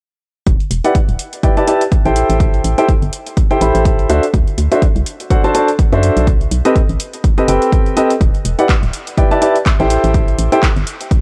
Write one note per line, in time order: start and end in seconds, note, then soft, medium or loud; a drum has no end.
0.47 0.57 E1 medium
0.47 kick loud
0.47 closed hi-hat medium
0.60 closed hi-hat soft
0.71 0.81 E1 medium
0.71 closed hi-hat medium
0.84 0.95 E4 medium
0.84 0.95 G4 medium
0.84 0.95 B4 medium
0.84 0.95 D5 medium
0.84 0.95 F#5 medium
0.84 closed hi-hat soft
0.95 kick loud
0.95 closed hi-hat medium
1.09 1.17 D1 medium
1.09 closed hi-hat soft
1.19 closed hi-hat medium
1.33 closed hi-hat medium
1.43 1.54 E4 medium
1.43 1.54 G4 medium
1.43 1.54 B4 medium
1.43 1.54 D5 medium
1.43 1.54 G5 medium
1.43 kick loud
1.43 closed hi-hat medium
1.57 1.66 E4 medium
1.57 1.66 G4 medium
1.57 1.66 B4 medium
1.57 1.66 D5 medium
1.57 1.66 A5 loud
1.57 closed hi-hat soft
1.68 1.81 E4 medium
1.68 1.81 G4 medium
1.68 1.81 B4 medium
1.68 1.81 D5 medium
1.68 1.81 A5 loud
1.68 closed hi-hat medium
1.81 closed hi-hat medium
1.92 kick loud
1.92 closed hi-hat medium
2.05 2.23 A1 medium
2.05 2.75 E4 medium
2.05 2.75 G4 medium
2.05 2.75 A4 medium
2.05 2.75 C5 medium
2.05 2.75 G5 medium
2.05 closed hi-hat soft
2.16 closed hi-hat medium
2.30 2.61 A1 medium
2.30 closed hi-hat soft
2.40 kick loud
2.40 closed hi-hat medium
2.54 closed hi-hat soft
2.64 2.75 A1 medium
2.64 closed hi-hat medium
2.78 2.88 E4 medium
2.78 2.88 G4 medium
2.78 2.88 A4 medium
2.78 2.88 C5 medium
2.78 2.88 G5 loud
2.78 closed hi-hat soft
2.89 kick loud
2.89 closed hi-hat soft
3.02 3.10 G1 medium
3.02 closed hi-hat soft
3.13 closed hi-hat medium
3.26 closed hi-hat soft
3.37 kick loud
3.37 closed hi-hat medium
3.51 3.60 E4 medium
3.51 3.60 G4 medium
3.51 3.60 A4 medium
3.51 3.60 C5 medium
3.51 3.60 G5 medium
3.51 closed hi-hat soft
3.61 3.72 A1 medium
3.61 4.07 E4 medium
3.61 4.07 G4 medium
3.61 4.07 A4 medium
3.61 4.07 C5 medium
3.61 4.07 B5 medium
3.61 closed hi-hat medium
3.75 4.06 A1 medium
3.75 closed hi-hat soft
3.85 kick loud
3.85 closed hi-hat soft
3.99 closed hi-hat soft
4.09 4.20 D2 medium
4.09 4.23 D4 medium
4.09 4.23 F#4 medium
4.09 4.23 A4 medium
4.09 4.23 C5 medium
4.09 4.23 E5 loud
4.09 closed hi-hat medium
4.23 closed hi-hat soft
4.34 4.44 D2 medium
4.34 kick loud
4.34 closed hi-hat soft
4.47 closed hi-hat soft
4.58 4.69 D2 medium
4.58 closed hi-hat medium
4.72 4.82 D4 medium
4.72 4.82 F#4 medium
4.72 4.82 A4 medium
4.72 4.82 C5 medium
4.72 4.82 E5 medium
4.72 closed hi-hat soft
4.82 kick loud
4.82 closed hi-hat soft
4.96 5.04 C2 medium
4.96 closed hi-hat soft
5.06 closed hi-hat medium
5.20 closed hi-hat soft
5.30 5.41 D4 medium
5.30 5.41 F#4 medium
5.30 5.41 A4 medium
5.30 5.41 C5 medium
5.30 5.41 F#5 medium
5.30 kick loud
5.30 closed hi-hat soft
5.44 5.53 D4 medium
5.44 5.53 F#4 medium
5.44 5.53 A4 medium
5.44 5.53 C5 medium
5.44 5.53 A5 loud
5.44 closed hi-hat soft
5.55 5.68 D4 medium
5.55 5.68 F#4 medium
5.55 5.68 A4 medium
5.55 5.68 C5 medium
5.55 5.68 A5 loud
5.55 closed hi-hat medium
5.68 closed hi-hat soft
5.79 kick loud
5.79 closed hi-hat soft
5.93 6.11 F#2 medium
5.93 6.26 D4 medium
5.93 6.26 F#4 medium
5.93 6.26 A4 medium
5.93 6.26 C5 medium
5.93 6.26 E5 medium
5.93 closed hi-hat soft
6.03 closed hi-hat medium
6.17 6.48 B1 medium
6.17 closed hi-hat soft
6.27 kick loud
6.27 closed hi-hat soft
6.41 closed hi-hat soft
6.51 6.62 B1 medium
6.51 closed hi-hat medium
6.65 6.75 C4 medium
6.65 6.75 G4 medium
6.65 6.75 A4 medium
6.65 6.75 B4 medium
6.65 6.75 D#5 loud
6.65 closed hi-hat soft
6.76 kick loud
6.76 closed hi-hat soft
6.89 6.97 A1 medium
6.89 closed hi-hat soft
7.00 closed hi-hat medium
7.13 closed hi-hat soft
7.24 kick loud
7.24 closed hi-hat soft
7.38 7.47 C4 medium
7.38 7.47 G4 medium
7.38 7.47 A4 medium
7.38 7.47 B4 medium
7.38 7.47 D#5 medium
7.38 closed hi-hat soft
7.48 7.59 F#1 medium
7.48 7.94 C4 medium
7.48 7.94 G4 medium
7.48 7.94 A4 medium
7.48 7.94 B4 medium
7.48 7.94 G5 medium
7.48 closed hi-hat medium
7.62 closed hi-hat soft
7.72 kick loud
7.72 closed hi-hat soft
7.86 closed hi-hat soft
7.97 8.10 C4 medium
7.97 8.10 G4 medium
7.97 8.10 A4 medium
7.97 8.10 B4 medium
7.97 8.10 D#5 loud
7.97 closed hi-hat medium
8.10 closed hi-hat soft
8.21 8.31 E1 medium
8.21 kick loud
8.21 closed hi-hat soft
8.35 closed hi-hat soft
8.45 8.56 E1 medium
8.45 closed hi-hat medium
8.59 8.69 E4 medium
8.59 8.69 G4 medium
8.59 8.69 B4 medium
8.59 8.69 D5 medium
8.59 8.69 F#5 medium
8.59 closed hi-hat soft
8.69 kick loud
8.69 clap loud
8.69 closed hi-hat soft
8.83 8.91 D1 medium
8.83 closed hi-hat soft
8.93 closed hi-hat medium
9.07 closed hi-hat soft
9.18 9.28 E4 medium
9.18 9.28 G4 medium
9.18 9.28 B4 medium
9.18 9.28 D5 medium
9.18 9.28 G5 medium
9.18 kick loud
9.18 closed hi-hat soft
9.31 9.40 E4 medium
9.31 9.40 G4 medium
9.31 9.40 B4 medium
9.31 9.40 D5 medium
9.31 9.40 A5 loud
9.31 closed hi-hat soft
9.42 9.55 E4 medium
9.42 9.55 G4 medium
9.42 9.55 B4 medium
9.42 9.55 D5 medium
9.42 9.55 A5 loud
9.42 closed hi-hat medium
9.56 closed hi-hat soft
9.66 kick loud
9.66 clap loud
9.66 closed hi-hat soft
9.80 9.98 A1 medium
9.80 10.49 E4 medium
9.80 10.49 G4 medium
9.80 10.49 A4 medium
9.80 10.49 C5 medium
9.80 10.49 G5 medium
9.80 closed hi-hat soft
9.90 closed hi-hat medium
10.04 10.35 A1 medium
10.04 closed hi-hat soft
10.14 kick loud
10.14 closed hi-hat soft
10.28 closed hi-hat soft
10.39 10.49 A1 medium
10.39 closed hi-hat medium
10.52 10.63 E4 medium
10.52 10.63 G4 medium
10.52 10.63 A4 medium
10.52 10.63 C5 medium
10.52 10.63 G5 loud
10.52 closed hi-hat soft
10.63 kick loud
10.63 clap loud
10.63 closed hi-hat soft
10.76 10.85 G1 medium
10.76 closed hi-hat soft
10.87 closed hi-hat medium
11.01 closed hi-hat soft
11.11 kick loud
11.11 closed hi-hat soft